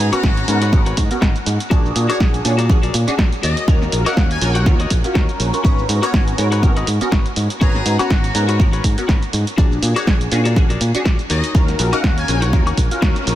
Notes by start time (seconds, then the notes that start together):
Already playing: G#4
0.12 B3 C#4 F#4 A#4 B4 C#5 A#5, muted fingered electric bass stroke, closed hi-hat, high woodblock, shaker
0.23 G#1, kick, snare, shaker
0.37 muted clean electric guitar stroke, closed hi-hat, shaker
0.48 G#2 B3 C#4 F#4 A#4, open hi-hat, shaker
0.61 F#4 A#4 B4 C#5, closed hi-hat, shaker
0.72 G#1 B3 C#4 F#4 A#4, kick, shaker
0.86 F#4 A#4 B4 C#5, closed hi-hat, shaker
0.97 G#2 C#5, kick, open hi-hat, shaker
1.05 D#5
1.10 B3 C#4 F#4 A#4, muted clean electric guitar stroke, muted fingered electric bass stroke, closed hi-hat, shaker
1.21 G#1 F#4 A#4 B4 D#5 F#5, kick, snare, shaker
1.36 closed hi-hat, shaker
1.46 G#2, muted clean electric guitar stroke, open hi-hat, shaker
1.60 closed hi-hat, shaker
1.70 A#1 D4 F#4 G#4 A#4 D5, kick, shaker
1.86 shaker
1.96 A#2, open hi-hat, shaker
2.09 D4 F#4 G#4 A#4 C#5 D5, closed hi-hat, high woodblock, shaker
2.20 A#1 C#5, kick, snare, shaker
2.33 muted clean electric guitar stroke, closed hi-hat, shaker
2.45 A#2 C#4 D4 F#4 G#4, open hi-hat, shaker
2.58 F#4 G#4 A#4 D5, closed hi-hat, shaker
2.69 A#1 C#4 D4 F#4 G#4, kick, shaker
2.83 F#4 G#4 A#4 D5, closed hi-hat, shaker
2.94 A#2, open hi-hat, shaker
3.07 C#4 D4 F#4 G#4, muted clean electric guitar stroke, muted fingered electric bass stroke, closed hi-hat, shaker
3.18 A#1 F#4 G#4 A#4 D5, kick, snare, shaker
3.32 closed hi-hat, shaker
3.43 D#2 F#4 A#4 C#5 D#5, open hi-hat, shaker
3.57 closed hi-hat, shaker
3.68 D#2 C#4 F#4 A#4 F5, kick, shaker
3.82 snare, shaker
3.92 A#1, open hi-hat, shaker
4.05 C#4 F#4 A#4 C#5 D#5 F5 F#5, closed hi-hat, high woodblock, shaker
4.17 D#2 F#5, kick, snare, shaker
4.30 G#5, muted clean electric guitar stroke, closed hi-hat, shaker
4.41 A#1 C#4 F4 F#4 A#4, open hi-hat, shaker
4.54 F#4 A#4 C#5 F#5, closed hi-hat, shaker
4.66 D#2 C#4 F4 F#4 A#4, kick, shaker
4.79 F#4 A#4 C#5 D#5, closed hi-hat, shaker
4.90 A#1, kick, open hi-hat, shaker
5.04 C#4 F4 F#4 A#4, muted clean electric guitar stroke, closed hi-hat, shaker
5.14 D#2 C#4 F#4 A#4 C#5 D#5 A#5, kick, snare, shaker
5.29 closed hi-hat, shaker
5.39 A#1, muted clean electric guitar stroke, open hi-hat, shaker
5.53 C#4 F4 F#4 A#4, closed hi-hat, shaker
5.64 G#1 B3 C#4 F#4 A#4 B4 C#5 A#5, kick, shaker
5.79 shaker
5.89 G#2, open hi-hat, shaker
6.02 B3 C#4 F#4 A#4 B4 C#5 A#5, closed hi-hat, high woodblock, shaker
6.13 G#1 C#5, kick, snare, shaker
6.27 muted clean electric guitar stroke, closed hi-hat, shaker
6.38 G#2 B3 C#4 F#4 A#4, open hi-hat, shaker
6.51 F#4 A#4 B4 C#5, closed hi-hat, shaker
6.62 G#1 B3 C#4 F#4 A#4, kick, shaker
6.76 F#4 A#4 B4 D#5, closed hi-hat, shaker
6.87 G#2, open hi-hat, shaker
7.01 B3 C#4 F#4 A#4, muted clean electric guitar stroke, muted fingered electric bass stroke, closed hi-hat, shaker
7.12 G#1 F#4 A#4 B4 C#5, kick, snare, shaker
7.26 closed hi-hat, shaker
7.36 G#2, muted clean electric guitar stroke, open hi-hat, shaker
7.50 closed hi-hat, shaker
7.61 G#1 B3 C#4 F#4 G#4 A#4 B4 C#5 A#5, kick, shaker
7.75 snare, shaker
7.86 G#2, open hi-hat, shaker
7.99 B3 C#4 F#4 A#4 B4 C#5 A#5, muted fingered electric bass stroke, closed hi-hat, high woodblock, shaker
8.10 G#1, kick, snare, shaker
8.24 muted clean electric guitar stroke, closed hi-hat, shaker
8.35 G#2 B3 C#4 F#4 A#4, open hi-hat, shaker
8.48 F#4 A#4 B4 C#5, closed hi-hat, shaker
8.59 G#1 B3 C#4 F#4 A#4, kick, shaker
8.73 F#4 A#4 B4 C#5, closed hi-hat, shaker
8.84 G#2, kick, open hi-hat, shaker
8.97 B3 C#4 F#4 A#4, muted clean electric guitar stroke, muted fingered electric bass stroke, closed hi-hat, shaker
9.08 G#1 F#4 A#4 B4 C#5, kick, snare, shaker
9.22 closed hi-hat, shaker
9.33 G#2, muted clean electric guitar stroke, open hi-hat, shaker
9.47 closed hi-hat, shaker
9.57 A#1 D4 F#4 G#4 A#4 D5, kick, shaker
9.72 shaker
9.83 A#2, open hi-hat, shaker
9.96 D4 F#4 G#4 A#4 C#5 D5, closed hi-hat, high woodblock, shaker
10.07 A#1 C#5, kick, snare, shaker
10.21 muted clean electric guitar stroke, closed hi-hat, shaker
10.32 A#2 C#4 D4 F#4 G#4, open hi-hat, shaker
10.45 F#4 G#4 A#4 D5, closed hi-hat, shaker
10.56 A#1 C#4 D4 F#4 G#4, kick, shaker
10.70 F#4 G#4 A#4 D5, closed hi-hat, shaker
10.81 A#2, open hi-hat, shaker
10.95 C#4 D4 F#4 G#4, muted clean electric guitar stroke, muted fingered electric bass stroke, closed hi-hat, shaker
11.05 A#1 F#4 G#4 A#4 D5, kick, snare, shaker
11.19 closed hi-hat, shaker
11.30 D#2 D#4 F#4 A#4 C#5 D#5, open hi-hat, shaker
11.44 closed hi-hat, shaker
11.54 D#2 C#4 F#4 A#4 F5, kick, shaker
11.68 snare, closed hi-hat, shaker
11.79 A#1, open hi-hat, shaker
11.92 C#4 D#4 F#4 A#4 D#5 F5 F#5, closed hi-hat, high woodblock, shaker
12.04 D#2 F#5, kick, snare, shaker
12.17 G#5, muted clean electric guitar stroke, closed hi-hat, shaker
12.28 A#1 C#4 F4 F#4 A#4, open hi-hat, shaker
12.42 D#4 F#4 A#4 C#5, closed hi-hat, shaker
12.53 D#2 C#4 F4 F#4 A#4, kick, shaker
12.66 D#4 F#4 A#4 C#5, closed hi-hat, high woodblock, shaker
12.77 A#1, kick, open hi-hat, shaker
12.91 C#4 F4 F#4 A#4, muted clean electric guitar stroke, closed hi-hat, shaker
13.02 D#2 C#4 D#4 F#4 A#4 C#5, kick, snare, shaker
13.16 closed hi-hat, shaker
13.27 A#1, muted clean electric guitar stroke, open hi-hat, shaker